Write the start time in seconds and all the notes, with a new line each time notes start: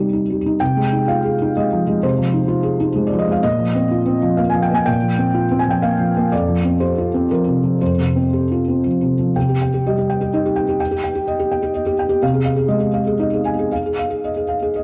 Already playing: C3 G3 D#4 G4
0.13 D#4
0.30 G3
0.46 D#4
0.60 C3 G5
0.77 G#3
0.93 D#4
1.08 F4 F5
1.24 G#4
1.42 D#4
1.57 G#3 D#5
1.73 F3
1.87 G#3
2.03 C3 C5
2.18 F3
2.34 D#4
2.48 F4
2.63 G#4
2.80 D#4
2.96 G#3
3.07 D5
3.13 F3
3.19 D#5
3.28 G#3 F5
3.43 A#2 D#5
3.58 F3
3.75 C4
3.91 F4
4.06 C4
4.22 F3
4.37 A#3 F5
4.50 G#5
4.54 F3
4.62 G5
4.71 A#3 G#5
4.86 A#2 G5
5.02 F3
5.18 C4
5.34 F4
5.51 C4
5.59 G#5
5.68 F3 G5
5.82 A#3 F5
6.00 F3
6.17 A#3
6.32 F2 D5
6.48 F3
6.65 C4
6.80 G4 C5
6.98 F4
7.14 C4
7.31 F3 A#4
7.48 C3
7.64 F3
7.81 F2 C5
7.98 C3
8.16 C4
8.33 G4
8.52 F4
8.69 C4
8.86 F3
9.02 C3
9.19 F3
9.36 C3 G5
9.49 G4
9.62 G5
9.74 G4
9.86 G3 D#5
9.98 G4
10.10 G5
10.21 G4
10.34 D#4 D#5
10.45 G4
10.56 G5
10.68 G4
10.80 G5
10.91 G4
11.04 G5
11.15 G4
11.27 D#5
11.40 G4
11.51 G5
11.63 G4
11.74 D#5
11.86 G4
11.99 G5
12.09 G4
12.22 C3 F5
12.34 G#4
12.45 F5
12.56 G#4
12.68 G#3 D#5
12.80 G#4
12.94 F5
13.07 G#4
13.19 D#4 D#5
13.33 G#4
13.45 G#5
13.59 G#4
13.72 F5
13.86 G#4
13.98 F5
14.10 G#4
14.24 D#5
14.36 G#4
14.49 F5
14.62 G#4
14.76 D#5